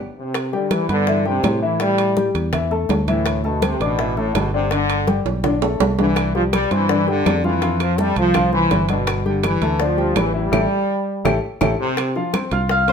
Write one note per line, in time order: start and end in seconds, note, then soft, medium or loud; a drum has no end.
0.18 0.51 C3 medium
0.34 high bongo medium
0.34 high conga soft
0.34 high timbale medium
0.53 0.70 D3 medium
0.53 0.83 G3 medium
0.53 0.83 G4 medium
0.53 0.83 G5 medium
0.53 high bongo soft
0.53 high conga soft
0.71 0.89 E3 medium
0.71 high bongo medium
0.71 high conga loud
0.71 high timbale medium
0.71 low timbale medium
0.89 1.40 G2 medium
0.89 1.23 D3 loud
0.89 1.04 B3 medium
0.89 1.04 B4 medium
0.89 1.04 B5 medium
0.89 high bongo soft
0.89 high conga soft
0.89 high timbale medium
1.07 1.23 E3 medium
1.07 1.23 E4 medium
1.07 1.23 E5 medium
1.07 high bongo medium
1.26 1.60 C3 medium
1.26 1.55 G3 medium
1.26 1.56 G4 medium
1.26 1.56 G5 medium
1.26 high bongo soft
1.26 high conga soft
1.44 2.29 A2 medium
1.44 high bongo soft
1.44 low bongo medium
1.44 high conga medium
1.44 high timbale medium
1.44 low timbale medium
1.62 1.80 E3 medium
1.62 1.77 E3 medium
1.62 1.77 E4 medium
1.62 1.77 E5 medium
1.80 2.10 E3 medium
1.80 2.31 G3 loud
1.80 2.10 E4 medium
1.80 2.10 E5 medium
1.80 high bongo medium
1.80 high conga soft
1.80 high timbale medium
1.98 high bongo soft
1.98 high conga soft
1.98 high timbale medium
2.17 2.46 G3 medium
2.17 2.47 G4 medium
2.17 2.47 G5 medium
2.17 high bongo medium
2.17 high conga medium
2.17 low timbale medium
2.35 2.85 E2 medium
2.35 high bongo soft
2.35 high conga soft
2.35 high timbale medium
2.53 2.68 E3 medium
2.53 2.68 E4 medium
2.53 2.68 E5 medium
2.53 high bongo medium
2.53 high conga soft
2.53 low conga medium
2.53 high timbale medium
2.71 3.01 A3 medium
2.71 3.01 A4 medium
2.71 3.01 A5 medium
2.71 high bongo soft
2.71 high conga soft
2.89 3.74 D2 medium
2.89 high bongo soft
2.89 low bongo medium
2.89 high conga medium
2.89 high timbale medium
2.89 low timbale medium
3.08 3.42 A2 medium
3.08 3.38 E3 medium
3.08 3.38 E4 medium
3.08 3.38 E5 medium
3.08 high conga medium
3.08 high timbale medium
3.26 high bongo medium
3.26 high timbale medium
3.44 3.63 B2 medium
3.44 3.74 A3 medium
3.44 3.74 A4 medium
3.44 3.74 A5 medium
3.44 high bongo soft
3.44 high conga soft
3.62 3.80 C3 medium
3.62 high bongo medium
3.62 high conga medium
3.62 high timbale medium
3.62 low timbale medium
3.80 4.31 A1 medium
3.80 4.17 B2 medium
3.80 3.96 D4 medium
3.80 3.96 D5 medium
3.80 3.96 D6 medium
3.80 high bongo soft
3.80 high conga soft
3.80 high timbale medium
3.99 4.14 E3 medium
3.99 4.14 E4 medium
3.99 4.14 E5 medium
3.99 high bongo medium
3.99 high conga soft
4.17 4.35 A2 medium
4.17 4.47 A3 medium
4.17 4.47 A4 medium
4.17 4.47 A5 medium
4.17 high bongo soft
4.17 high conga soft
4.34 5.20 G1 medium
4.34 4.53 B2 medium
4.34 high bongo soft
4.34 low bongo medium
4.34 high conga medium
4.34 high timbale medium
4.34 low timbale medium
4.53 4.70 C3 medium
4.53 4.68 D3 medium
4.53 4.68 D4 medium
4.53 4.69 D5 medium
4.71 5.22 D3 loud
4.71 5.01 D3 medium
4.71 5.01 D4 medium
4.71 5.02 D5 medium
4.71 high bongo medium
4.71 high conga soft
4.71 high timbale medium
4.90 high bongo soft
4.90 high conga soft
4.90 high timbale medium
5.07 5.37 G3 medium
5.07 5.38 G4 medium
5.07 5.38 G5 medium
5.07 high bongo medium
5.07 high conga loud
5.07 low timbale medium
5.25 5.76 B1 medium
5.25 high bongo soft
5.25 high conga soft
5.25 high timbale medium
5.44 5.59 D3 medium
5.44 5.59 D4 medium
5.44 5.59 D5 medium
5.44 high bongo medium
5.44 high conga soft
5.44 low conga medium
5.44 high timbale medium
5.62 5.92 A3 medium
5.62 5.92 A4 medium
5.62 5.92 A5 medium
5.62 high bongo soft
5.62 high conga soft
5.62 low timbale medium
5.80 6.65 C2 medium
5.80 high bongo soft
5.80 low bongo medium
5.80 high conga medium
5.80 low timbale loud
5.98 6.28 D3 medium
5.98 6.33 E3 loud
5.98 6.28 D4 medium
5.98 6.28 D5 medium
5.98 high conga medium
5.98 low timbale medium
6.16 high bongo medium
6.16 high timbale medium
6.16 claves medium
6.35 6.43 F3 medium
6.35 6.65 G3 medium
6.35 6.65 G4 medium
6.35 6.65 G5 medium
6.35 high bongo soft
6.35 high conga soft
6.53 6.70 G3 loud
6.53 high bongo medium
6.53 high conga loud
6.53 high timbale loud
6.53 low timbale medium
6.53 claves medium
6.71 7.22 G2 medium
6.71 7.08 E3 loud
6.71 6.86 C4 medium
6.71 6.86 C5 medium
6.71 6.86 C6 medium
6.71 high bongo soft
6.71 high conga soft
6.71 high timbale medium
6.89 7.04 D3 medium
6.89 7.04 D4 medium
6.89 7.04 D5 medium
6.89 high bongo medium
7.07 7.44 D3 loud
7.07 7.37 G3 medium
7.07 7.37 G4 medium
7.07 7.37 G5 medium
7.07 high bongo soft
7.07 high conga soft
7.26 8.11 F2 medium
7.26 high bongo soft
7.26 low bongo medium
7.26 high conga medium
7.26 high timbale medium
7.26 low timbale medium
7.26 claves medium
7.44 7.78 E3 loud
7.44 7.59 F3 medium
7.44 7.59 F4 medium
7.44 7.59 F5 medium
7.44 high conga medium
7.62 7.92 F3 medium
7.62 7.92 F4 medium
7.62 7.92 F5 medium
7.62 high bongo medium
7.62 high timbale medium
7.80 7.99 F3 medium
7.80 high bongo soft
7.80 high conga soft
7.80 high timbale medium
7.80 claves medium
7.98 8.17 G3 loud
7.98 8.28 A3 medium
7.98 8.29 A4 medium
7.98 8.29 A5 medium
7.98 high bongo medium
7.98 high conga loud
7.98 low timbale medium
8.16 8.67 C2 medium
8.16 8.51 F3 loud
8.16 high bongo soft
8.16 high conga soft
8.16 high timbale medium
8.34 8.50 F3 medium
8.34 8.50 F4 medium
8.34 8.50 F5 medium
8.34 high bongo medium
8.34 high conga soft
8.34 low conga medium
8.34 high timbale medium
8.34 claves medium
8.53 8.87 E3 loud
8.53 8.82 C4 medium
8.53 8.83 C5 medium
8.53 8.83 C6 medium
8.53 high bongo soft
8.53 high conga soft
8.71 9.56 G1 medium
8.71 high bongo soft
8.71 low bongo medium
8.71 high conga medium
8.71 high timbale medium
8.71 low timbale medium
8.89 9.23 B2 medium
8.89 9.19 D3 medium
8.89 9.19 D4 medium
8.89 9.19 D5 medium
8.89 high conga medium
8.89 high timbale medium
9.07 high bongo medium
9.07 high timbale medium
9.07 claves medium
9.26 9.42 D3 medium
9.26 9.55 G3 medium
9.26 9.55 G4 medium
9.26 9.55 G5 medium
9.26 high bongo soft
9.26 high conga soft
9.43 9.78 E3 medium
9.43 high bongo medium
9.43 high conga medium
9.43 high timbale medium
9.43 low timbale medium
9.43 claves medium
9.62 10.12 D2 medium
9.62 9.77 A3 medium
9.62 9.77 A4 medium
9.62 9.77 A5 medium
9.62 high bongo soft
9.62 high conga soft
9.62 high timbale medium
9.80 9.95 D3 medium
9.80 10.16 F3 loud
9.80 9.95 D4 medium
9.80 9.95 D5 medium
9.80 high bongo medium
9.80 high conga soft
9.97 10.27 G3 medium
9.97 10.27 G4 medium
9.97 10.28 G5 medium
9.97 high bongo soft
9.97 high conga soft
10.16 10.50 A1 medium
10.16 10.35 E3 medium
10.16 high bongo soft
10.16 low bongo medium
10.16 high conga medium
10.16 high timbale loud
10.16 low timbale medium
10.16 claves medium
10.34 10.49 E3 medium
10.34 11.30 G3 medium
10.34 10.49 E4 medium
10.34 10.49 E5 medium
10.52 10.66 A1 medium
10.52 10.64 E4 medium
10.52 10.64 G4 medium
10.52 10.64 A4 medium
10.52 low bongo medium
10.52 low conga medium
10.52 high timbale medium
10.52 claves loud
11.25 11.39 A1 medium
11.25 11.36 E4 medium
11.25 11.36 G4 loud
11.25 11.36 A4 medium
11.25 low bongo loud
11.25 low conga medium
11.25 high timbale medium
11.25 claves loud
11.61 11.75 A1 medium
11.61 11.73 E4 medium
11.61 11.73 G4 medium
11.61 11.73 A4 medium
11.61 low bongo loud
11.61 low conga medium
11.61 high timbale loud
11.61 claves medium
11.80 12.13 C3 loud
11.97 high bongo medium
11.97 high conga soft
11.97 high timbale medium
11.97 claves medium
12.15 12.31 F3 medium
12.15 12.31 F4 medium
12.15 12.31 F5 medium
12.15 high bongo soft
12.15 high conga soft
12.34 12.49 C4 medium
12.34 12.49 C5 medium
12.34 12.49 C6 medium
12.34 high bongo medium
12.34 high conga medium
12.34 high timbale medium
12.34 claves medium
12.51 12.93 C2 medium
12.51 12.82 F4 medium
12.51 12.82 F5 medium
12.51 12.82 F6 medium
12.51 high bongo soft
12.51 high timbale medium
12.69 12.93 F5 medium
12.69 high bongo medium
12.69 high conga soft
12.88 12.93 C4 medium
12.88 12.93 C5 medium
12.88 12.93 C6 medium
12.88 high bongo soft
12.88 high conga soft
12.88 high timbale medium